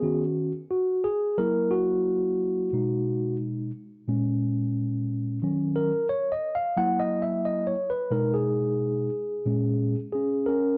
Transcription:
0.00 0.51 D#3 medium
0.00 0.23 B3 medium
0.00 0.51 C#4 soft
0.00 0.51 F#4 medium
0.00 0.23 G#4 medium
0.71 1.05 F#4 medium
1.04 1.39 G#4 loud
1.38 2.69 F#3 medium
1.38 2.69 A#3 medium
1.38 2.69 E4 medium
1.38 1.73 A#4 loud
1.71 3.36 F#4 medium
2.73 3.70 B2 soft
2.73 3.70 G#3 soft
2.73 3.70 D#4 medium
4.08 5.38 A#2 medium
4.08 5.39 G#3 soft
4.08 5.39 C#4 medium
5.42 5.90 D#3 medium
5.42 5.91 F#3 soft
5.42 5.91 C#4 medium
5.76 6.07 A#4 medium
6.09 6.33 C#5 loud
6.32 6.55 D#5 medium
6.55 6.78 F5 loud
6.77 7.74 F#3 medium
6.77 7.74 A#3 medium
6.77 7.75 E4 medium
6.77 7.00 F#5 loud
6.99 7.23 D#5 loud
7.22 7.45 E5 medium
7.45 7.66 D#5 medium
7.67 7.90 C#5 medium
7.90 8.13 B4 medium
8.11 9.08 B2 medium
8.11 9.09 G#3 medium
8.11 9.09 D#4 medium
8.11 8.35 A#4 medium
8.34 9.99 G#4 medium
9.46 9.94 A#2 medium
9.46 9.95 G#3 medium
9.46 9.95 C#4 medium
10.13 10.46 C#4 medium
10.13 10.48 G#4 medium
10.46 10.78 C#4 medium
10.46 10.78 A#4 medium

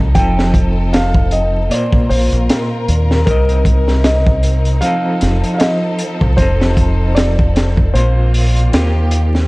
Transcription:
0.00 0.14 C2 medium
0.00 1.68 F3 medium
0.00 3.23 C4 medium
0.00 1.68 D#4 medium
0.00 0.10 A4 medium
0.00 0.14 A4 medium
0.14 1.68 F1 medium
0.14 1.64 F3 medium
0.14 1.65 C4 medium
0.14 1.66 D#4 medium
0.14 1.70 A4 medium
0.14 0.95 G5 loud
0.14 kick loud
0.14 closed hi-hat medium
0.19 1.67 A4 medium
0.39 snare medium
0.54 kick medium
0.54 closed hi-hat medium
0.93 1.29 F5 loud
0.93 snare loud
0.93 closed hi-hat medium
1.14 kick loud
1.31 1.72 D#5 loud
1.31 closed hi-hat medium
1.69 3.19 A#2 medium
1.69 3.20 A#3 medium
1.69 3.26 F4 medium
1.69 3.21 F4 medium
1.69 4.80 A#4 medium
1.69 2.11 D5 medium
1.69 closed hi-hat medium
1.74 3.22 C5 medium
1.92 kick loud
2.09 2.30 A#1 medium
2.09 2.84 C5 medium
2.09 open hi-hat medium
2.32 2.47 A#1 medium
2.32 closed hi-hat soft
2.50 snare loud
2.50 closed hi-hat medium
2.88 3.23 D#2 loud
2.88 closed hi-hat medium
3.11 snare soft
3.26 4.80 C2 loud
3.26 4.76 C3 medium
3.26 4.82 C3 medium
3.26 8.69 C4 medium
3.26 4.77 C4 medium
3.26 7.91 D#4 medium
3.26 4.07 A#4 loud
3.26 4.77 A#4 medium
3.26 kick loud
3.26 closed hi-hat medium
3.31 4.78 D#5 medium
3.49 closed hi-hat soft
3.65 kick medium
3.65 closed hi-hat medium
3.88 snare soft
4.04 4.79 D#5 loud
4.04 snare loud
4.04 closed hi-hat medium
4.27 kick loud
4.43 closed hi-hat medium
4.65 closed hi-hat soft
4.81 6.31 F3 medium
4.81 7.92 F3 medium
4.81 6.32 C4 medium
4.81 6.33 D#4 medium
4.81 7.92 A4 medium
4.81 5.53 F5 loud
4.81 closed hi-hat medium
4.86 6.34 A4 medium
5.21 5.42 F1 medium
5.21 snare soft
5.21 closed hi-hat medium
5.44 closed hi-hat soft
5.54 5.61 F5 medium
5.58 6.17 D#5 loud
5.58 snare loud
5.58 closed hi-hat medium
5.99 closed hi-hat medium
6.21 6.37 C2 medium
6.21 kick loud
6.37 7.91 F1 loud
6.37 7.87 F3 medium
6.37 7.88 C4 medium
6.37 7.89 D#4 medium
6.37 7.18 C5 loud
6.37 kick loud
6.37 closed hi-hat medium
6.42 7.90 A4 medium
6.61 snare medium
6.77 kick medium
6.77 closed hi-hat medium
7.15 7.96 D5 loud
7.15 snare loud
7.15 closed hi-hat medium
7.39 kick medium
7.56 snare medium
7.56 closed hi-hat medium
7.77 kick medium
7.94 8.69 A#1 medium
7.94 8.66 A#2 medium
7.94 9.48 A#3 medium
7.94 8.66 A#3 medium
7.94 9.48 F4 medium
7.94 8.66 F4 medium
7.94 9.07 C5 medium
7.94 8.67 C5 medium
7.94 closed hi-hat medium
8.34 open hi-hat medium
8.56 closed hi-hat soft
8.72 9.48 D#2 medium
8.72 9.44 D#3 medium
8.72 9.48 D#3 medium
8.72 9.44 A#3 medium
8.72 9.45 F4 medium
8.72 9.48 G4 medium
8.72 9.45 G4 medium
8.72 snare loud
8.72 closed hi-hat medium
9.11 closed hi-hat medium
9.35 snare soft

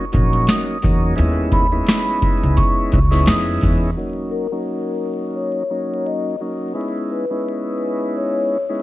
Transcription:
0.12 0.45 A#1 medium
0.12 0.78 F#3 medium
0.12 0.78 A#3 medium
0.12 0.78 C#4 medium
0.12 0.78 D#4 loud
0.12 0.45 C#6 medium
0.12 kick medium
0.12 closed hi-hat medium
0.33 closed hi-hat medium
0.47 0.80 D#6 medium
0.47 snare loud
0.47 closed hi-hat medium
0.82 1.15 E2 medium
0.82 1.15 F#3 medium
0.82 1.15 A#3 medium
0.82 1.15 C#4 medium
0.82 1.15 D#4 medium
0.82 kick medium
0.82 open hi-hat medium
1.16 1.80 D#2 loud
1.16 1.67 G#3 medium
1.16 1.67 B3 medium
1.16 1.67 C#4 medium
1.16 1.67 D#4 medium
1.16 1.67 E4 loud
1.16 closed hi-hat loud
1.52 2.53 B5 medium
1.52 kick medium
1.52 closed hi-hat medium
1.72 2.99 G#3 medium
1.72 2.99 B3 medium
1.72 2.99 C#4 medium
1.72 2.99 D#4 medium
1.72 3.00 E4 medium
1.87 snare loud
1.87 snare medium
1.87 closed hi-hat medium
2.22 kick medium
2.22 closed hi-hat medium
2.43 2.56 C#2 medium
2.57 2.89 C#6 medium
2.57 kick loud
2.57 closed hi-hat loud
2.92 3.24 C#2 medium
2.92 3.24 C#6 medium
2.92 kick medium
2.92 closed hi-hat medium
3.11 3.90 G#3 medium
3.11 3.91 B3 medium
3.11 3.91 C#4 medium
3.11 3.90 D#4 medium
3.11 3.91 E4 loud
3.11 snare soft
3.11 closed hi-hat medium
3.26 3.58 F2 loud
3.26 3.58 D#6 medium
3.26 snare loud
3.26 closed hi-hat medium
3.61 3.94 E2 medium
3.61 kick loud
3.61 open hi-hat medium
3.97 4.47 F#3 medium
3.97 4.47 A#3 medium
3.97 4.47 C#4 medium
3.97 4.48 D#4 loud
4.31 5.32 A#4 medium
4.52 5.63 F#3 medium
4.52 5.63 A#3 medium
4.52 5.63 C#4 medium
4.52 5.64 D#4 medium
5.36 5.68 C#5 medium
5.70 6.36 F#3 medium
5.70 6.36 A#3 medium
5.70 6.36 C#4 medium
5.70 6.36 D#4 loud
5.70 6.02 C#5 medium
6.06 6.38 D#5 medium
6.41 6.73 F#3 medium
6.41 6.74 A#3 medium
6.41 6.74 C#4 medium
6.41 6.73 D#4 medium
6.74 7.25 G#3 medium
6.74 7.25 B3 medium
6.74 7.26 C#4 medium
6.74 7.25 D#4 medium
6.74 7.26 E4 loud
7.11 8.12 B4 medium
7.30 8.58 G#3 medium
7.30 8.58 B3 medium
7.30 8.58 C#4 medium
7.30 8.57 D#4 medium
7.30 8.58 E4 medium
8.17 8.48 C#5 medium
8.51 8.82 C#5 medium
8.69 8.82 G#3 medium
8.69 8.82 B3 medium
8.69 8.82 C#4 medium
8.69 8.82 D#4 medium
8.69 8.82 E4 loud

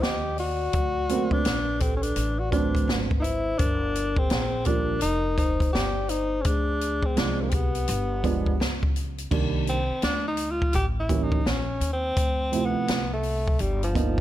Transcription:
0.01 0.71 D#2 medium
0.01 0.38 G4 loud
0.01 0.37 D#5 medium
0.01 snare loud
0.01 closed hi-hat medium
0.36 1.35 F#4 loud
0.36 1.27 D5 medium
0.36 open hi-hat soft
0.73 1.42 D2 medium
0.73 kick loud
0.73 closed hi-hat medium
1.09 1.37 F#3 medium
1.09 1.37 A3 medium
1.09 1.38 A#3 medium
1.09 1.38 C4 medium
1.09 closed hi-hat medium
1.31 1.81 D4 loud
1.31 1.77 B4 medium
1.31 kick medium
1.45 2.13 A#1 medium
1.45 snare loud
1.45 closed hi-hat medium
1.78 1.95 C4 medium
1.78 1.81 G4 medium
1.78 1.94 A4 medium
1.78 kick medium
1.78 closed hi-hat medium
1.95 2.05 C#4 medium
1.95 2.03 A4 medium
2.02 2.41 D4 medium
2.02 2.39 B4 medium
2.02 closed hi-hat medium
2.16 2.84 A1 medium
2.16 closed hi-hat medium
2.37 2.52 F#4 medium
2.37 2.51 D5 medium
2.51 3.06 F#3 medium
2.51 3.06 A3 medium
2.51 3.06 C4 medium
2.51 2.96 D4 medium
2.51 3.06 D4 medium
2.51 2.95 B4 medium
2.51 kick medium
2.51 closed hi-hat medium
2.75 kick medium
2.75 closed hi-hat medium
2.88 3.56 G#1 medium
2.88 snare medium
2.88 closed hi-hat medium
3.11 kick medium
3.18 3.23 D#4 medium
3.18 3.60 E4 loud
3.18 3.23 B4 medium
3.18 3.59 C5 medium
3.24 closed hi-hat medium
3.58 4.27 G1 loud
3.58 4.19 D4 loud
3.58 4.17 A#4 medium
3.58 kick loud
3.58 closed hi-hat medium
3.95 closed hi-hat medium
4.16 4.68 C4 loud
4.16 4.66 G#4 medium
4.16 kick medium
4.30 4.99 A#1 medium
4.30 snare loud
4.30 closed hi-hat medium
4.65 4.94 F3 medium
4.65 4.94 G3 medium
4.65 4.95 A#3 medium
4.65 5.01 D4 medium
4.65 4.95 D4 medium
4.65 5.00 A#4 medium
4.65 kick medium
4.65 closed hi-hat medium
5.01 5.70 F1 medium
5.01 5.35 D#4 loud
5.01 5.35 A#4 medium
5.01 closed hi-hat medium
5.37 5.71 D#4 medium
5.37 5.71 C5 medium
5.37 kick medium
5.37 closed hi-hat medium
5.60 kick medium
5.60 closed hi-hat medium
5.72 6.42 G1 medium
5.72 6.11 G4 medium
5.72 6.06 D5 medium
5.72 snare loud
5.72 closed hi-hat medium
6.08 6.43 D#4 medium
6.08 6.39 C5 medium
6.08 closed hi-hat medium
6.40 6.47 C#4 medium
6.40 6.44 G#4 medium
6.45 7.13 D2 loud
6.45 7.07 D4 medium
6.45 7.02 G#4 medium
6.45 kick loud
6.45 closed hi-hat medium
6.81 closed hi-hat medium
7.03 7.19 C4 medium
7.03 7.15 G#4 medium
7.03 kick medium
7.16 7.85 C2 medium
7.16 7.44 F3 medium
7.16 7.44 G#3 medium
7.16 7.45 C4 medium
7.16 7.45 D4 medium
7.16 7.43 D4 medium
7.16 7.39 G#4 medium
7.16 snare loud
7.16 closed hi-hat medium
7.39 7.51 A#3 medium
7.39 7.47 G4 medium
7.49 7.56 C4 medium
7.49 8.59 G4 medium
7.49 7.53 G#4 soft
7.49 kick medium
7.49 closed hi-hat medium
7.55 8.61 B3 medium
7.75 closed hi-hat medium
7.88 8.56 G1 loud
7.88 closed hi-hat loud
8.23 8.51 F3 medium
8.23 8.51 G#3 medium
8.23 8.52 B3 medium
8.23 8.52 D4 medium
8.23 kick medium
8.23 closed hi-hat medium
8.46 kick medium
8.60 9.28 C#2 medium
8.60 snare loud
8.60 closed hi-hat medium
8.83 kick medium
8.96 closed hi-hat medium
9.18 closed hi-hat medium
9.31 9.87 C2 medium
9.31 9.76 D#3 medium
9.31 9.76 G3 medium
9.31 9.76 A#3 medium
9.31 9.76 D4 medium
9.31 kick loud
9.31 crash medium
9.67 10.01 C4 loud
9.67 closed hi-hat medium
9.90 muted upright bass stroke soft
10.02 10.70 D2 medium
10.02 10.25 D4 loud
10.02 snare loud
10.02 closed hi-hat medium
10.28 10.52 D#4 medium
10.37 closed hi-hat medium
10.51 10.74 F4 medium
10.62 kick medium
10.73 11.42 A1 loud
10.73 10.86 G4 loud
10.73 kick medium
10.73 closed hi-hat medium
11.00 11.25 E4 medium
11.09 11.37 E3 medium
11.09 11.38 G3 medium
11.09 11.38 A#3 medium
11.09 11.38 C#4 medium
11.09 kick medium
11.09 closed hi-hat medium
11.23 11.49 D#4 medium
11.32 kick medium
11.45 11.79 A#1 medium
11.45 11.92 C#4 medium
11.45 snare medium
11.45 closed hi-hat medium
11.81 12.15 D#2 medium
11.81 closed hi-hat medium
11.93 12.67 C4 loud
12.17 12.72 D2 medium
12.17 kick loud
12.17 closed hi-hat medium
12.52 12.97 C3 medium
12.52 12.97 F3 medium
12.52 12.97 A3 medium
12.52 12.97 E4 medium
12.52 closed hi-hat medium
12.66 13.13 B3 medium
12.75 muted upright bass stroke soft
12.88 13.56 C2 medium
12.88 snare loud
12.88 closed hi-hat medium
13.13 13.62 A3 medium
13.23 open hi-hat medium
13.48 kick medium
13.59 14.21 G1 loud
13.59 13.83 G3 loud
13.59 closed hi-hat medium
13.83 14.21 F3 medium
13.83 closed hi-hat soft
13.94 14.21 F3 medium
13.94 14.21 A#3 medium
13.94 14.21 B3 medium
13.94 14.21 D#4 medium
13.94 kick medium
13.94 closed hi-hat medium

